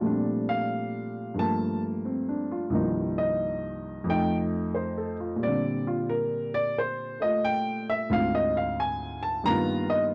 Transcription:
0.00 1.37 A#2 medium
0.00 1.35 F3 medium
0.00 1.38 G3 medium
0.00 1.36 A3 soft
0.00 0.15 F4 soft
0.05 1.39 C4 soft
0.05 1.39 D4 medium
0.49 1.34 F5 medium
1.34 2.69 G2 soft
1.34 2.72 F3 soft
1.34 2.73 A3 soft
1.39 2.72 A#3 medium
1.39 1.82 A5 medium
2.05 2.47 C4 soft
2.29 2.63 D4 medium
2.51 2.86 F4 soft
2.70 4.06 C2 medium
2.70 4.06 G2 medium
2.70 4.07 D#3 medium
2.70 4.05 F3 medium
2.70 4.08 A#3 soft
2.75 4.08 D#4 medium
3.18 4.04 D#5 medium
4.04 5.40 F2 medium
4.04 5.41 F3 medium
4.09 5.43 A3 medium
4.09 5.43 D#4 medium
4.09 4.36 G5 medium
4.75 5.16 C5 medium
4.97 5.32 A4 medium
5.20 5.54 F4 medium
5.36 8.08 A#2 medium
5.36 8.10 G3 soft
5.43 8.09 C4 soft
5.43 5.86 D5 medium
5.47 8.14 D3 medium
5.87 6.09 F4 medium
6.09 6.53 A#4 medium
6.54 6.76 D5 loud
6.78 7.21 C5 medium
7.20 8.11 A3 soft
7.20 8.10 F4 medium
7.20 7.44 D#5 medium
7.45 7.87 G5 loud
7.90 8.11 E5 loud
8.10 9.45 D2 medium
8.10 9.45 G#2 soft
8.10 9.46 C4 medium
8.10 9.46 F4 medium
8.10 8.34 F5 loud
8.35 8.56 D#5 medium
8.57 8.78 F5 medium
8.80 9.22 G#5 medium
9.23 9.45 A5 medium
9.44 10.14 G2 medium
9.44 10.14 D#3 medium
9.44 10.14 A#3 medium
9.44 10.14 B3 medium
9.44 9.89 A#5 loud
9.49 10.14 F4 medium
9.90 10.04 D#5 medium

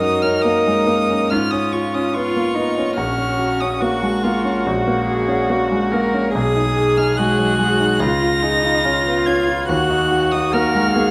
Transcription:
0.00 1.27 F#2 medium
0.00 0.15 C#4 soft
0.00 1.32 D#4 medium
0.00 0.36 F#4 soft
0.00 1.33 A#4 medium
0.00 0.24 D#6 medium
0.22 0.57 C#4 soft
0.22 0.44 F6 medium
0.43 0.79 A#3 soft
0.43 1.32 D#6 medium
0.67 0.88 G#3 soft
0.87 1.22 A#3 soft
1.10 1.31 C#4 soft
1.30 2.93 G#2 medium
1.30 2.16 C#4 medium
1.30 2.15 F4 medium
1.30 1.53 F6 medium
1.51 1.86 C#4 medium
1.51 1.74 D#6 medium
1.72 2.06 F4 soft
1.72 1.96 C#6 medium
1.94 2.27 C#4 soft
1.94 2.15 D#6 medium
2.14 2.48 B3 soft
2.14 2.56 F4 medium
2.14 2.98 F4 medium
2.14 2.96 C#6 medium
2.36 2.56 A#3 soft
2.55 2.89 B3 soft
2.55 2.96 D#4 medium
2.78 2.98 C#4 soft
2.96 4.62 A#1 medium
2.96 3.82 C#4 medium
2.96 3.81 F#4 medium
2.96 3.62 F6 medium
3.19 3.52 C#4 soft
3.39 3.73 F#4 soft
3.60 3.95 C#4 soft
3.60 3.82 D#6 medium
3.81 4.15 A#3 soft
3.81 4.25 F#4 medium
3.81 6.31 F#4 medium
3.81 4.66 C#6 medium
4.03 4.24 G#3 soft
4.23 4.58 A#3 soft
4.23 4.68 F4 medium
4.45 4.78 C#4 soft
4.66 6.31 A#1 medium
4.66 5.08 F#4 medium
4.87 5.21 A#3 medium
5.07 5.41 F#4 soft
5.07 5.51 G#4 medium
5.28 5.62 C#4 medium
5.49 5.84 A#3 medium
5.49 5.94 F#4 medium
5.71 5.93 G#3 soft
5.92 6.27 A#3 medium
5.92 6.34 A#4 medium
6.14 6.35 C#4 soft
6.34 7.97 B1 medium
6.34 7.20 G#4 medium
6.34 8.04 G#4 medium
6.34 6.99 D#6 medium
6.56 6.89 D#4 soft
6.77 7.10 G#4 medium
6.97 7.31 D#4 soft
6.97 7.19 F6 medium
7.17 7.52 G#3 medium
7.17 7.60 F#4 medium
7.17 8.02 F#6 medium
7.39 7.60 F#3 soft
7.59 7.92 G#3 medium
7.59 8.03 F#4 medium
7.80 8.01 D#4 soft
8.00 9.64 C#2 medium
8.00 8.44 F4 medium
8.00 9.70 F4 medium
8.00 9.27 A#6 loud
8.22 8.55 F4 medium
8.43 8.86 D#4 medium
8.43 8.76 G#4 soft
8.64 8.98 F4 medium
8.85 9.19 C#4 medium
8.85 9.69 F4 medium
9.06 9.27 B3 soft
9.26 9.61 C#4 medium
9.26 9.68 G#6 medium
9.48 9.69 F4 medium
9.68 11.11 D#2 medium
9.68 10.55 F#4 medium
9.68 11.11 F#4 medium
9.68 10.33 F#6 medium
9.90 10.24 D#4 medium
10.12 10.45 F#4 medium
10.32 10.66 D#4 medium
10.32 10.54 D#6 medium
10.53 10.87 A#3 medium
10.53 10.96 A#4 medium
10.53 11.11 F6 loud
10.75 10.96 G#3 soft
10.96 11.11 A#3 medium
10.96 11.11 G#4 medium

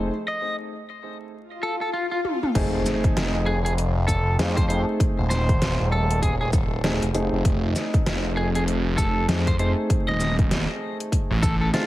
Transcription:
0.00 0.10 F1 medium
0.00 0.10 A3 medium
0.00 0.10 C4 medium
0.00 0.10 D#4 medium
0.00 0.10 G#4 medium
0.28 0.55 D#5 medium
1.33 swell medium
1.63 1.75 A4 medium
1.81 1.89 A4 medium
1.93 2.05 F4 medium
2.11 2.20 F4 medium
2.25 high tom medium
2.43 mid tom medium
2.55 2.84 F1 loud
2.55 3.47 A3 loud
2.55 3.47 C4 medium
2.55 3.47 D#4 loud
2.55 3.47 G#4 loud
2.55 kick loud
2.55 closed hi-hat medium
2.55 crash loud
2.55 impact medium
2.86 snare soft
2.86 closed hi-hat medium
2.86 shaker medium
3.04 kick loud
3.04 closed hi-hat soft
3.16 4.06 F1 loud
3.16 snare loud
3.16 closed hi-hat medium
3.46 3.58 G#4 medium
3.46 cross-stick soft
3.65 3.73 G#4 medium
3.65 closed hi-hat medium
3.78 closed hi-hat medium
4.08 4.37 F1 medium
4.08 4.36 A4 medium
4.08 kick medium
4.08 closed hi-hat medium
4.08 shaker medium
4.39 4.85 F2 loud
4.39 4.56 A3 medium
4.39 4.56 C4 medium
4.39 4.56 D#4 medium
4.39 4.56 G#4 medium
4.39 snare loud
4.39 closed hi-hat medium
4.57 4.65 C5 medium
4.57 kick loud
4.57 closed hi-hat medium
4.68 6.81 A3 medium
4.68 6.81 C4 medium
4.68 6.81 D#4 medium
4.68 6.81 G#4 medium
4.68 4.81 C5 medium
4.68 closed hi-hat medium
5.00 kick loud
5.00 closed hi-hat medium
5.19 5.77 D#1 loud
5.30 5.89 C5 medium
5.30 snare soft
5.30 closed hi-hat medium
5.30 shaker medium
5.49 kick loud
5.49 closed hi-hat soft
5.62 snare loud
5.62 closed hi-hat medium
5.80 6.38 D#1 loud
5.92 6.20 A4 medium
6.11 closed hi-hat medium
6.22 6.34 G#4 medium
6.22 kick medium
6.22 closed hi-hat medium
6.41 6.99 D#1 loud
6.41 6.49 G#4 medium
6.53 kick loud
6.53 closed hi-hat medium
6.53 shaker medium
6.84 7.01 A3 medium
6.84 7.01 C4 medium
6.84 7.01 D#4 medium
6.84 7.01 G#4 medium
6.84 snare loud
6.84 closed hi-hat medium
7.02 7.12 F1 medium
7.02 closed hi-hat medium
7.14 7.30 F1 loud
7.14 9.26 A3 medium
7.14 9.26 C4 medium
7.14 9.26 D#4 medium
7.14 9.26 G#4 medium
7.14 closed hi-hat medium
7.33 7.43 F1 loud
7.45 7.74 F1 loud
7.45 kick loud
7.45 closed hi-hat medium
7.76 snare soft
7.76 closed hi-hat medium
7.76 shaker medium
7.94 kick loud
7.94 closed hi-hat soft
8.06 8.96 F1 loud
8.06 snare loud
8.06 closed hi-hat medium
8.37 8.49 G#4 medium
8.37 cross-stick soft
8.55 8.63 G#4 medium
8.55 closed hi-hat medium
8.68 closed hi-hat medium
8.98 9.27 F1 medium
8.98 9.26 A4 medium
8.98 kick medium
8.98 closed hi-hat medium
8.98 shaker medium
9.28 9.74 F2 loud
9.28 9.46 A3 medium
9.28 9.45 C4 medium
9.28 9.45 D#4 medium
9.28 9.46 G#4 medium
9.28 snare loud
9.28 closed hi-hat medium
9.47 9.55 C5 medium
9.47 kick loud
9.47 closed hi-hat medium
9.59 11.71 A3 medium
9.59 11.71 C4 medium
9.59 11.70 D#4 medium
9.59 11.70 G#4 medium
9.59 9.71 C5 medium
9.59 closed hi-hat medium
9.90 kick loud
9.90 closed hi-hat medium
10.08 10.66 D#1 loud
10.08 10.35 D#5 medium
10.20 snare soft
10.20 closed hi-hat medium
10.20 shaker medium
10.39 kick loud
10.39 closed hi-hat soft
10.51 snare loud
10.51 closed hi-hat medium
11.00 closed hi-hat medium
11.12 kick medium
11.12 closed hi-hat medium
11.31 11.71 A1 loud
11.43 11.54 A4 medium
11.43 kick loud
11.43 closed hi-hat medium
11.43 shaker medium
11.61 11.69 A4 medium
11.73 11.86 A3 medium
11.73 11.86 C4 medium
11.73 11.86 D#4 medium
11.73 11.85 F4 medium
11.73 11.86 G#4 medium
11.73 snare loud
11.73 closed hi-hat medium

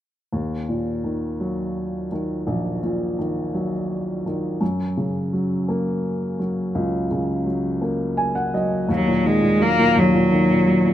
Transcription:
0.33 2.43 D#2 soft
0.69 2.07 A#2 soft
1.04 2.10 D#3 soft
1.40 2.79 F#3 soft
2.12 3.17 D#3 soft
2.47 4.57 A#1 soft
2.83 4.22 A#2 soft
3.19 4.25 D#3 soft
3.54 4.58 F#3 soft
4.26 4.60 D#3 soft
4.61 6.71 F#2 soft
4.97 6.36 C#3 soft
5.33 6.38 F#3 soft
5.68 7.07 A#3 soft
6.39 7.45 F#3 soft
6.75 8.85 C#2 soft
7.11 8.50 C#3 soft
7.46 8.52 F#3 soft
7.81 8.86 A#3 soft
8.17 8.34 G#5 soft
8.35 8.52 F#5 soft
8.54 8.88 F#3 soft
8.54 8.87 D#5 soft
8.89 9.95 D#2 medium
8.93 9.28 F#3 medium
9.07 9.41 A#2 soft
9.25 10.30 D#3 soft
9.25 9.63 G#3 medium
9.42 9.77 A#2 soft
9.60 10.66 F#3 soft
9.60 10.01 A#3 medium
9.79 10.13 A#2 soft
9.96 10.94 D#2 soft
9.96 10.94 F#3 medium
10.14 10.49 A#2 soft
10.32 10.94 D#3 soft
10.50 10.84 A#2 soft
10.67 10.94 F#3 soft
10.86 10.94 A#2 soft

